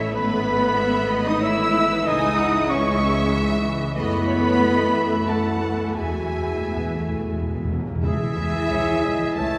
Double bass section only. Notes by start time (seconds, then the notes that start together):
Already playing: A1
0.14 G#1
2.06 C#2
3.98 F#2
5.96 E2
8.04 C#2
8.37 C#2
8.70 C#2
9.04 C#2
9.38 C#2